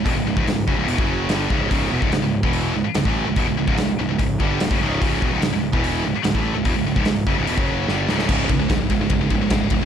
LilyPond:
<<
  \new Staff \with { instrumentName = "Distorted electric guitar" } { \clef bass \time 4/4 \key cis \phrygian \tempo 4 = 146 <e, b,>16 <cis, gis,>16 <cis, gis,>16 <cis, gis,>16 <cis, gis,>8 <fis, cis>16 <cis, gis,>16 <e, b,>16 <fis, cis fis>8. <g, d g>8 <cis, gis, cis>8 | <cis, gis, cis>8 <e, b,>16 <cis, gis,>16 <cis, gis,>16 <cis, gis,>8 <e, b, e>8. <cis, gis,>16 r16 <cis, gis,>16 <a, e a>8 <cis, gis,>16 | <e, b,>16 <cis, gis,>16 <cis, gis,>16 <cis, gis,>16 <cis, gis,>8 <cis, gis,>16 <cis, gis,>16 <cis, gis,>8 <g, d g>8 <cis, gis,>16 <fis, cis>16 <cis, gis, cis>8 | <cis, gis, cis>8 <e, b,>16 <cis, gis,>16 <cis, gis,>16 <cis, gis,>8 <e, b, e>8. <cis, gis,>16 r16 <cis, gis,>16 <a, e a>8 <cis, gis,>16 |
<e, b,>16 <cis, gis,>16 <cis, gis,>16 <cis, gis,>16 <cis, gis,>8 <fis, cis>16 <cis, gis,>16 <e, b,>16 <fis, cis fis>8. <g, d g>8 <cis, gis, cis>8 | <cis, gis, cis>8 <cis, gis,>16 <cis, gis,>16 <cis, gis,>8 <cis, gis,>16 <cis, gis,>16 <cis, gis,>16 <cis, gis,>16 <cis, gis,>16 <cis, gis,>16 <cis, gis,>8 <cis, gis,>16 r16 | }
  \new Staff \with { instrumentName = "Distorted electric guitar" } { \clef bass \time 4/4 \key cis \phrygian <e, b,>16 <cis, gis,>16 <cis, gis,>16 <cis, gis,>16 <cis, gis,>8 <fis, cis>16 <cis, gis,>16 <e, b,>16 <fis, cis fis>8. <g, d g>8 <cis, gis, cis>8 | <cis, gis, cis>8 <e, b,>16 <cis, gis,>16 <cis, gis,>16 <cis, gis,>8 <e, b, e>8. <cis, gis,>16 r16 <cis, gis,>16 <a, e a>8 <cis, gis,>16 | <e, b,>16 <cis, gis,>16 <cis, gis,>16 <cis, gis,>16 <cis, gis,>8 <cis, gis,>16 <cis, gis,>16 <cis, gis,>8 <g, d g>8 <cis, gis,>16 <fis, cis>16 <cis, gis, cis>8 | <cis, gis, cis>8 <e, b,>16 <cis, gis,>16 <cis, gis,>16 <cis, gis,>8 <e, b, e>8. <cis, gis,>16 r16 <cis, gis,>16 <a, e a>8 <cis, gis,>16 |
<e, b,>16 <cis, gis,>16 <cis, gis,>16 <cis, gis,>16 <cis, gis,>8 <fis, cis>16 <cis, gis,>16 <e, b,>16 <fis, cis fis>8. <g, d g>8 <cis, gis, cis>8 | <cis, gis, cis>8 <cis, gis,>16 <cis, gis,>16 <cis, gis,>8 <cis, gis,>16 <cis, gis,>16 <cis, gis,>16 <cis, gis,>16 <cis, gis,>16 <cis, gis,>16 <cis, gis,>8 <cis, gis,>16 gis,16 | }
  \new Staff \with { instrumentName = "Picked electric bass" } { \clef bass \time 4/4 \key cis \phrygian e,,16 cis,,16 cis,,16 cis,,16 cis,,8 fis,,16 cis,,16 e,,16 fis,,8. g,,8 cis,,8 | cis,,8 e,,16 cis,,16 cis,,16 cis,,8 e,,8. cis,,16 r16 cis,,16 a,,8 cis,,16 | e,,16 cis,,16 cis,,16 cis,,16 cis,,8 cis,,16 cis,,16 cis,,8 g,,8 cis,,16 fis,,16 cis,,8 | cis,,8 e,,16 cis,,16 cis,,16 cis,,8 e,,8. cis,,16 r16 cis,,16 a,,8 cis,,16 |
e,,16 cis,,16 cis,,16 cis,,16 cis,,8 fis,,16 cis,,16 e,,16 fis,,8. g,,8 cis,,8 | cis,,8 cis,8 cis,,8 cis,,8 fis,,8 cis,,8 cis,,8 e,,8 | }
  \new DrumStaff \with { instrumentName = "Drums" } \drummode { \time 4/4 <hho bd>8. bd16 <hho sn>8 bd8 hho16 bd8. <hho sn>8 bd8 | <hho bd>8. bd16 <hho sn>8. bd16 hho4 <hho sn>16 bd8. | <hho bd>8. bd16 <hho sn>4 <hho bd>8 bd8 <hho sn>16 bd8. | <hho bd>8 bd8 <hho sn>8. bd16 hho4 <hho sn>16 bd8. |
<hho bd>8. bd16 <hho sn>8 bd8 hho16 bd8. sn8 sn16 sn16 | <cymc bd>8 <bd cymr>8 <bd cymr sn>8 <bd cymr>8 <bd cymr>8 <bd cymr>8 <bd cymr sn>8 <bd cymr>8 | }
>>